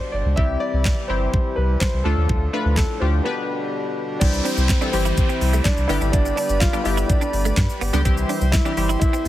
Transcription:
Already playing: B2 D3 G3 D4 G4 C5
0.12 G1 D5
0.25 C#2
0.36 C2 C3 E3 G3 C4 E4 G4 E5, kick
0.60 D5
0.73 C2
0.85 kick, snare, clap
1.08 G1 G3 C4 E4 G4 C5
1.34 kick
1.56 C2 B4
1.80 C5, kick, snare, clap
1.93 C2
2.04 D2 A2 D3 F3 A3 D4 F4 A4
2.17 D#2
2.29 D2, kick
2.53 A3 D4 F4 B4
2.65 D2
2.76 A4, kick, snare, clap
3.00 D2 A3 D4 F4 G4 C5
3.24 B2 G3 B3 D4 G4 B4
4.20 C2 E3 G3 C4 D4 E4 G4 C5 G5, kick, closed hi-hat, crash, downlifter, shaker
4.33 muted clean electric guitar stroke, shaker
4.44 C4 D4, open hi-hat, shaker
4.57 C2, shaker
4.69 kick, snare, clap, closed hi-hat, shaker
4.81 E3 G3 C4 D4 E4 A4, shaker
4.92 G1 E3 G3 C4 E4 G4, muted clean electric guitar stroke, open hi-hat, shaker
5.05 E4, shaker
5.17 kick, closed hi-hat, shaker
5.29 C4, shaker
5.41 C2, muted clean electric guitar stroke, open hi-hat, shaker
5.53 A3, shaker
5.64 D4, muted clean electric guitar stroke, kick, snare, clap, closed hi-hat, shaker
5.77 C2, shaker
5.88 G1 D3 G3 B3 D4 E4 G4 B4 D5 B5, open hi-hat, shaker
6.01 G#1 D4, shaker
6.12 G1 B3 D4, kick, closed hi-hat, shaker
6.25 muted clean electric guitar stroke, shaker
6.36 D4, open hi-hat, shaker
6.49 G1, shaker
6.60 F4, kick, snare, clap, closed hi-hat, shaker
6.73 D3 G3 B3 D4 G4, shaker
6.84 G1 D3 G3 B3 D4 E4 G4, muted clean electric guitar stroke, open hi-hat, shaker
6.97 E4, shaker
7.08 D4, kick, closed hi-hat, shaker
7.21 D4, shaker
7.33 G1, muted clean electric guitar stroke, open hi-hat, shaker
7.45 A3, shaker
7.57 G2, muted clean electric guitar stroke, kick, snare, clap, closed hi-hat, shaker
7.69 shaker
7.81 G1 B3, open hi-hat, shaker
7.93 C#2 D3 G3 B3 D4 G4, shaker
8.05 C2 E3 G3 C4 E4 G4 C5 E5 C6, kick, closed hi-hat, shaker
8.17 muted clean electric guitar stroke, shaker
8.29 D4, open hi-hat, shaker
8.41 C2, shaker
8.52 E4, kick, snare, clap, closed hi-hat, shaker
8.65 E3 G3 C4 D4 E4 G4, shaker
8.77 G1 E3 G3 C4 E4 G4, muted clean electric guitar stroke, open hi-hat, shaker
8.89 E4, shaker
9.00 E4, kick, closed hi-hat, shaker
9.13 C4, shaker

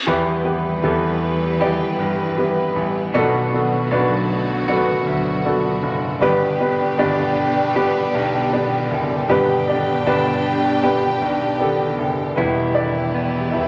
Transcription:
0.06 E2 E3 G3 B3 E4 G4 B4
0.43 B3 E4 G4 B4
0.82 E2 B3 E4 G4 A4
1.59 B3 E4 G4 D5
1.99 G2
2.37 B3 E4 G4 B4
2.76 A1
3.14 B1 B2 D3 F#3 A3 B3 D4 F#4 A4
3.53 B3 D4 F#4 A4
3.91 B1 B3 D4 F#4 B4
4.68 B3 D4 F#4 A4
4.76 B4
5.06 D2
5.44 B3 D4 F#4 A4
5.83 F#1
6.21 G1 G2 B2 G3 B3 D4 G4 B4
6.59 B3 D4 G4 B4
6.98 G1 B3 D4 G4 D5
7.74 B3 D4 G4 B4
8.14 B1
8.52 B3 D4 G4 D5
8.91 F#1
9.29 G1 G2 B3 D4 G4 B4 G5
9.67 B3 D4 G4 D5
10.06 G1 B3 D4 G4 B4
10.82 B3 D4 G4 B4
11.22 B1
11.59 B3 D4 G4 A4
11.98 F#1
12.36 E1 E2 B2 E3 G3 B3 E4 G4 B4
12.75 D4 D5
13.15 B3
13.51 E1 E4 E5

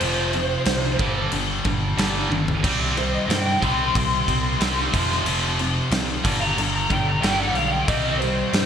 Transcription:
Already playing: C5
0.00 F1 F2 C3 F3, crash
0.33 F2 C3 F3, crash
0.65 C2 F2 C3 F3, snare, crash
0.98 G1 G2 D3 G3, kick, crash
1.32 G1 G2 D3 G3, crash
1.64 G1 G2 D3 G3, kick, crash
1.97 G1 G2 D3 G3, snare, crash
2.30 G1 G2 D3 G3, high tom
2.48 floor tom
2.64 C2 C3 G3 C4, kick, crash
2.97 C3 G3 C4 C5, crash
3.14 D#5
3.28 G2 C3 G3 C4 G5, snare, crash
3.62 C2 C3 G3 C4 C6, kick, crash
3.94 C2 C3 G3 C4 C6, kick, crash
4.27 C2 C3 G3 C4, kick, crash
4.61 C2 C3 G3 C4, snare, crash
4.93 F1 F2 C3 F3, kick, crash
5.12 snare
5.25 F1 F2 C3 F3, crash
5.59 F2 C3 F3, crash
5.91 C2 F2 C3 F3, snare, crash
6.24 G1 G2 D3 G3, kick, crash
6.41 A#5
6.57 G1 G2 D3 G3, crash
6.76 A#5
6.90 G1 G2 D3 G3 G5, kick, crash
7.07 A#5
7.22 G1 G2 D3 G3 G5, snare, crash
7.39 F#5
7.54 B1 G2 D3 G3 F5, crash
7.71 G5
7.87 C2 C3 G3 C4 D#5, kick, crash
8.19 C3 G3 C4 C5, crash
8.53 G2 C3 G3 C4, snare, crash

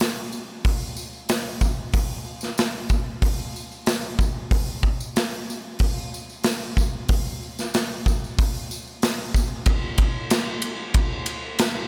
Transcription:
0.00 snare, open hi-hat
0.32 tambourine
0.64 kick, open hi-hat, tambourine
0.81 tambourine
0.97 tambourine
1.13 tambourine
1.29 snare, open hi-hat, tambourine
1.61 kick, tambourine
1.92 kick, open hi-hat, tambourine
2.24 tambourine
2.41 snare, tambourine
2.58 snare, open hi-hat, tambourine
2.89 kick, tambourine
3.22 kick, open hi-hat, tambourine
3.39 tambourine
3.56 tambourine
3.72 tambourine
3.86 snare, open hi-hat, tambourine
4.19 kick, tambourine
4.51 kick, open hi-hat, tambourine
4.83 kick, tambourine
5.00 tambourine
5.16 snare, open hi-hat, tambourine
5.50 tambourine
5.79 kick, open hi-hat, tambourine
5.98 tambourine
6.14 tambourine
6.30 tambourine
6.44 snare, open hi-hat, tambourine
6.77 kick, tambourine
7.09 kick, open hi-hat
7.27 tambourine
7.42 tambourine
7.59 snare, tambourine
7.74 snare, open hi-hat, tambourine
7.91 tambourine
8.06 kick, tambourine
8.24 tambourine
8.39 kick, open hi-hat, tambourine
8.55 tambourine
8.71 tambourine
8.87 tambourine
9.02 snare, open hi-hat, tambourine
9.21 tambourine
9.34 kick, tambourine
9.66 kick, ride
9.98 kick, ride
10.30 snare, ride, tambourine
10.62 ride
10.94 kick, ride
11.26 ride
11.59 snare, ride, tambourine

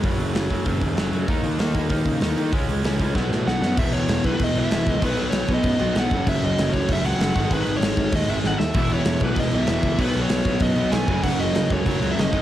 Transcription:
0.03 F#1 F#2 C#3 F#3, kick, open hi-hat
0.20 F#1, open hi-hat
0.34 F#1 F#2 C#3 F#3, snare, open hi-hat
0.50 F#1 F#2 C#3 F#3, kick, open hi-hat
0.66 F#1 F#2 C#3 F#3, kick, open hi-hat
0.81 D#2, kick, open hi-hat
0.97 F#1 F#2 C#3 F#3, snare, open hi-hat
1.12 F#2 C#3 F#3, open hi-hat
1.28 D#2 D#3 A#3 D#4, kick, open hi-hat
1.44 D#2, open hi-hat
1.59 D#2 D#3 A#3 D#4, snare, open hi-hat
1.75 D#2 D#3 A#3 D#4, kick, open hi-hat
1.90 D#2 D#3 A#3 D#4, kick, open hi-hat
2.05 C#3, kick, open hi-hat
2.21 D#2 D#3 A#3 D#4, snare, open hi-hat
2.37 D#3 A#3 D#4, open hi-hat
2.52 C#2 C#3 G#3 C#4, kick, open hi-hat
2.68 C#2, open hi-hat
2.84 C#2 C#3 G#3 C#4, snare, open hi-hat
2.99 C#2 C#3 G#3 C#4, kick, open hi-hat
3.14 B1 B2 F#3 B3, kick, snare
3.30 A2, snare
3.46 B1 B2 F#3 B3 F#5, snare
3.61 F#2 B2 F#3 B3, snare
3.77 E1 E2 B2 E3 E5, kick, crash
3.92 E1 C#5, crash
4.07 E1, snare, crash
4.24 B1 E2 B2 E3 B4, kick, crash
4.39 E1, kick, crash
4.44 D#5
4.55 B1 E2 B2 E3, crash
4.59 E5
4.70 E1 E2 B2 E3, snare, crash
4.86 C#2 D#5, kick, crash
5.01 B1 B2 F#3 B3, kick, crash
5.06 B4
5.17 B1, crash
5.30 B1 C#5, snare, crash
5.47 B1 F#3 B3, kick, crash
5.52 B2 D#5
5.63 F#2, kick, crash
5.79 B1 B2 F#3 B3, crash
5.95 B1 B2 F#3 B3, snare, crash
5.99 F#5
6.10 F#1 F#2 C#3 F#3, kick, crash
6.27 F#1 E5, kick, crash
6.42 F#1 D#5, crash
6.57 F#1 F#2 C#3, snare, crash
6.61 F#3
6.73 C#2 C#5, kick, crash
6.88 F#1 F#2 C#3 F#3, kick, crash
6.93 E5
7.02 C#2 C#3 F#3, crash
7.06 F#2 F#5
7.18 F#1, snare, crash
7.35 G#1 G#2 D#3 G#3 F#5, kick, crash
7.51 G#1 B4, kick, crash
7.65 G#1, crash
7.77 G#1 C#5
7.82 G#2 D#3 G#3, snare, crash
7.97 G#1, kick, crash
8.12 D#2 G#2 D#3 G#3 D#5, kick, crash
8.28 G#1 G#2 D#3 G#3 E5, crash
8.44 G#1 F#5, snare
8.58 D#2 E5, snare
8.74 E1 E2 B2 G#3 B3, kick, crash
8.78 E3 E4
8.90 E1, crash
8.94 C#5
9.05 E1, snare, crash
9.20 B1 B2 E3, kick, crash
9.25 E2 B4
9.36 E1 D#5, kick, crash
9.51 B1 B2 E3 E5, crash
9.56 E2
9.67 E1 E2 B2, snare, crash
9.71 E3
9.83 C#2, kick, crash
9.98 B1 B2 F#3 B3 D#4 B4, kick, crash
10.13 B1, crash
10.23 C#5
10.29 B1, snare, crash
10.45 B1 F#3 B3, kick, crash
10.49 B2
10.60 F#2 D#5, kick, crash
10.76 B1 B2 F#3 B3, crash
10.92 B1 B2 F#3 G#5, snare, crash
10.96 B3
11.08 F#1 F#2 C#3 F#3 A#3 C#4, kick, crash
11.23 F#1 F#5, kick, crash
11.38 F#1 D#5, crash
11.53 F#1 F#2 C#3, snare, crash
11.58 F#3
11.70 C#2 C#5, kick, crash
11.85 F#1 F#2 C#3 F#3, kick, crash
12.01 C#2 F#2 C#3 F#3, crash
12.12 E5
12.17 F#1 D#5, snare, crash
12.30 G#1 G#2 D#3 G#3, kick, crash
12.35 B3 D#4

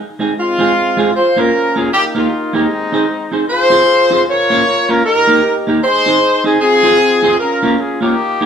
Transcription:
0.19 G#3 C4 D#4 G#4
0.38 G#3 C4 F4
0.58 G#3 C4 F4 G#4
0.97 G#3 C4 F4 G#4
1.16 F4 C5
1.36 A#3 C#4 F4 A#4
1.76 A#3 C#4 F4 G#4 A#4
1.93 A#3 D#4 G4
2.15 A#3 D#4 F4 G4 A#4
2.53 G#3 A#3 C4 D#4 G4 A#4
2.92 C4 D#4 G#4 C5
3.32 C4 D#4 G#4 C5
3.50 F4 G#4 C5
3.70 C4 F4 G#4 C5
4.10 C4 F4 G#4 C5
4.29 F4 A#4 C#5
4.50 A#3 C#4 F4 A#4
4.89 A#3 C#4 F4 A#4
5.06 D#4 G4 A#4
5.27 A#3 D#4 G4 A#4
5.67 A#3 D#4 G4 A#4
5.84 D#4 G#4 C5
6.06 C4 D#4 G#4 C5
6.44 C4 D#4 G#4 C5
6.61 C4 F4 G#4
6.83 C4 F4 G#4 C5
7.23 C4 F4 G#4 C5
7.40 C#4 F4 A#4
7.63 A#3 C#4 F4 A#4
7.79 G#4
8.01 A#3 C#4 D#4 F4 G4 A#4
8.41 A#3 D#4 G4 A#4

